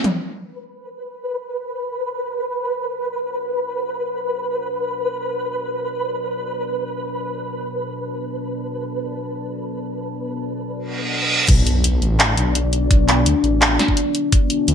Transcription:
0.04 closed hi-hat, mid tom
0.13 B3 F#4 B4 D5 F#5
5.80 A5
10.77 reverse cymbal
11.48 B1 B3 D4 F#4 D5, kick, closed hi-hat, crash, sub drop
11.67 closed hi-hat
11.84 closed hi-hat
12.02 A1, closed hi-hat
12.20 clap, closed hi-hat
12.37 B1, closed hi-hat
12.55 closed hi-hat
12.73 closed hi-hat
12.91 kick, closed hi-hat
13.09 clap, closed hi-hat, tambourine
13.26 D2, closed hi-hat
13.44 A1, closed hi-hat
13.62 clap, closed hi-hat
13.79 snare, closed hi-hat
13.88 kick
13.97 closed hi-hat
14.15 closed hi-hat
14.32 B4, kick, closed hi-hat
14.50 closed hi-hat
14.68 D2, closed hi-hat

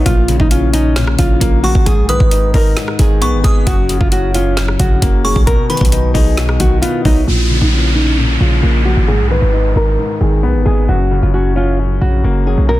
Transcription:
0.06 A#1 A#2 F4, kick, closed hi-hat
0.28 C#3, closed hi-hat
0.40 A#1 D#4, kick
0.51 C#4 F4, closed hi-hat
0.73 C#4 D#4, closed hi-hat
0.96 A#2, snare, closed hi-hat
1.07 cross-stick
1.19 A#1 C#3 F4, kick, closed hi-hat
1.40 A#1 A#3, kick, closed hi-hat
1.63 F3 F#4 C#6, open hi-hat
1.75 G#1, kick
1.86 G#2 G#4, kick, closed hi-hat
1.98 B1
2.09 D#3 B4 D#6, closed hi-hat
2.20 G#1, kick
2.31 D#4, closed hi-hat
2.54 G#1 D#4 A#4, kick, open hi-hat
2.77 G#2, snare, closed hi-hat
2.88 cross-stick
2.99 G#1 D#3 G#4, kick, closed hi-hat
3.21 B1 B3 C#6, closed hi-hat
3.33 G#1
3.44 G#1 G#3 G#4 D#6, kick, closed hi-hat
3.67 F#1 F#2 F#4, kick, closed hi-hat
3.89 C#3, closed hi-hat
4.01 F#1 F4, kick
4.12 C#4 F#4, closed hi-hat
4.34 C#4 F4, closed hi-hat
4.57 F#2, snare, closed hi-hat
4.68 cross-stick
4.80 A#1 C#3 F#4, kick, closed hi-hat
5.02 F#1 A#3, kick, closed hi-hat
5.25 F#3 G#4 C#6, open hi-hat
5.36 B1, kick
5.47 B2 A#4, kick, closed hi-hat
5.69 D#3 B4 B5, closed hi-hat
5.77 B1, kick, closed hi-hat
5.85 closed hi-hat
5.92 D#4, closed hi-hat
6.14 B1 D#4 G#4, kick, open hi-hat
6.37 B2, snare, closed hi-hat
6.49 cross-stick
6.60 B1 D#3 F#4, kick, closed hi-hat
6.82 B3 F4, closed hi-hat
7.05 B1 F#3 D#4, kick, open hi-hat
7.27 A#1 A#2 F4, downlifter
7.50 C#3
7.61 A#1 D#4
7.72 C#4 F4
7.95 C#4 D#4
8.18 A#2
8.40 A#1 C#3 F4
8.62 A#1 A#3
8.85 F3 F#4
8.97 G#1
9.08 G#2 G#4
9.19 B1
9.30 D#3 B4
9.42 G#1
9.53 D#4
9.76 G#1 D#4 A#4
9.98 G#2
10.21 G#1 D#3 G#4
10.43 B1 B3
10.55 G#1
10.65 G#1 G#3 G#4
10.89 F#1 F#2 F#4, riser
11.11 C#3
11.22 F#1 F4
11.34 C#4 F#4
11.56 C#4 F4
11.79 F#2
12.01 A#1 C#3 F#4
12.24 F#1 A#3
12.46 F#3 G#4
12.58 B1
12.69 B2 A#4

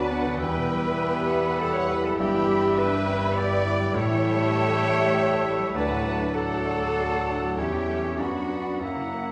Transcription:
Already playing: D2 D3 F#3 B3 D4 F#4 B4 D5 F#5 A5 B5
0.11 B3 F#5
0.26 D3
0.38 E2 G3 B3 E4 B4 E5 G5 B5
0.43 E2
0.57 B2
0.72 G3
0.88 E4
0.97 E5 G5
1.04 B4
1.19 G4
1.29 E5 F#5
1.47 B5
1.60 G4 A4 F#5
1.73 B4 C#5
1.88 E4 B4
2.04 G3 A4
2.18 G1 G2 G3 B3 G4 E5 G5 B5
2.35 E3
2.47 G3
2.62 E4
2.76 G3 D4 B4 E5 G5 B5
2.94 G4
3.06 C#4 E5
3.24 B5
3.34 B3 B4 D5 G5
3.39 G4
3.53 B4
3.67 E4
3.80 G3
3.93 A1 A2 G3 A3 E4 C#5 E5 G5 A5
4.11 E3
4.25 G3
4.40 E4
4.56 A4
4.71 G4
4.87 E5
5.04 A5
5.17 G4
5.31 A4
5.45 E4
5.59 G3
5.74 D2 F#3 A3 D4 B4 D5 F#5 A5
5.90 A2
6.04 F#3
6.20 D4
6.34 F#3 A3 A4 D5 F#5 A5
6.51 F#4
6.66 D5
6.81 A5
6.95 F#4
7.11 A4
7.30 D4
7.43 F#3
7.57 E2 G3 C#4 G4 C#5 E5 G5
7.72 E3
7.89 G3 A3
8.05 C#4
8.18 F#2 B3 D4 F#4 D5 F#5 B5
8.33 F#3
8.49 B3
8.65 F#4
8.79 F#2 A#3 C#4 E4 E5 F#5 A#5
8.85 F#5
8.96 C#3
9.14 A#3

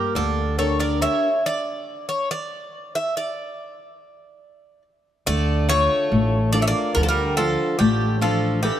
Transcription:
Already playing: G3 A#3 G4 A#4 D5
0.15 D2 D3 D4 A4
0.58 D4 G4 A4 A#4 C#5
0.79 A#4 D5
1.02 G4 A#4 C#5 E5
1.46 D5
2.09 C#5
2.31 D5
2.95 E5
3.17 D5
5.27 D2 D3 A3 D5
5.69 A3 D4 F4 A4 C#5
6.12 A1 A3
6.53 A#3 D4 F4 A4 D5
6.62 C#4 E5
6.67 A#3 D5
6.95 D2 D3 F3 A#4
7.03 F3 A4
7.09 G3 A#4
7.37 F3 D4 F4 A4
7.79 A1 D3 A3 G4
8.21 F3 D4 A4 F5
8.63 E3 D4 G4 A4

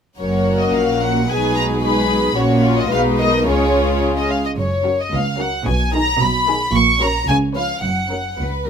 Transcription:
0.19 F#1 F#2 A#3 C#4 F#4 A#4 C#5
0.60 D#5
0.74 A#1 A#2 F5
1.03 F#5
1.28 B1 B2 G#3 D#4 G#4 B4 G#5
1.55 A#5
1.83 G#3 D#4 G#4 B4 B5
2.35 A#1 A#2 A#3 C#4 F#4 C#5
2.63 F4
2.79 D#5
2.91 B1 B2 G#3 B3 D#4 B4 F5
3.18 A#4 D#5
3.46 C#2 C#3 G#3 C#4 F4 G#4 C#5
4.17 D#5
4.30 F5
4.45 D#5
4.57 F#1 F#2 C#5
4.85 F#3 C#4 F#4 A#4
5.00 D#5
5.13 C#2 F5
5.39 F#3 C#4 F#4 A#4 F#5
5.66 B1 B2 G#5
5.94 D#3 D#4 G#4 A#5
6.20 B1 B2 B5
6.48 D#3 D#4 G#4
6.74 A#1 A#2 C#6
7.01 F#3 C#4 A#4 C#5 A#5
7.28 C#2 C#3 G#5
7.55 F3 C#4 B4 C#5 F5
7.83 F#1 F#2 F#5
8.10 F#3 C#4 A#4 C#5
8.39 C#2 B4
8.65 F#3 A#4

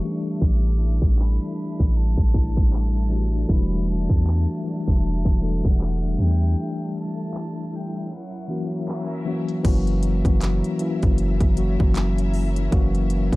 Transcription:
Already playing: D4 A4 E5 C#6
0.02 E3 G3 A3 C#4 E4 G4
0.10 D4
0.25 closed hi-hat
0.42 A1 D6, kick, closed hi-hat
0.79 closed hi-hat
1.02 A1, kick, closed hi-hat
1.18 B5, clap, closed hi-hat
1.80 A1, kick
1.98 A5
2.17 A1, kick
2.33 E3 G3 A3 D4 E4, kick, closed hi-hat
2.57 kick
2.73 A5, clap
3.09 E3 G3 A3 D4 F#4, open hi-hat
3.33 closed hi-hat
3.48 E1 E3 G3 A3 D4 E4 F#4 E5 B5, kick, closed hi-hat
3.57 F#4
3.87 A5, closed hi-hat
4.10 E2, kick, closed hi-hat
4.27 clap
4.63 E3 F#3 A3 D4 F#4 A5, closed hi-hat
4.71 G3
4.88 E1, kick
5.25 E1, kick
5.41 E3 G3 A3 D4 A4
5.65 E1 F#5, kick
5.81 clap
6.17 E2 E3 G3 A3 C#4 E4 G4 A4 G5
6.26 D4
6.57 closed hi-hat
6.98 A5
7.34 clap
7.75 G5
8.07 F#3 C#4 A#4 E5 G5
8.14 F#5
8.48 E3 F#3 A#3 C#4 F#4
8.80 closed hi-hat
8.88 clap
9.11 closed hi-hat
9.25 E3 F#3 A#3 C#4 F#4
9.48 closed hi-hat
9.63 F#1 E3 F#3 A#3 C#4 E4 F#4 A#4 E5, kick, closed hi-hat, crash
9.87 closed hi-hat
10.03 closed hi-hat
10.24 F#1 E3 F#3 A#3 C#4 F#4, kick, closed hi-hat
10.41 clap, closed hi-hat
10.64 closed hi-hat
10.79 E3 F#3 A#3 C#4 E4, closed hi-hat
11.03 F#1, kick, closed hi-hat
11.18 closed hi-hat
11.41 F#1, kick, closed hi-hat
11.56 E3 F#3 A#3 C#4 F#4, closed hi-hat
11.80 F#1, kick
11.95 clap, closed hi-hat
12.18 closed hi-hat
12.34 open hi-hat
12.56 closed hi-hat
12.71 F#1 E3 F#3 A#3 C#4 F#4, kick, closed hi-hat
12.95 closed hi-hat
13.10 closed hi-hat
13.32 F#1 E3 F#3, kick, closed hi-hat

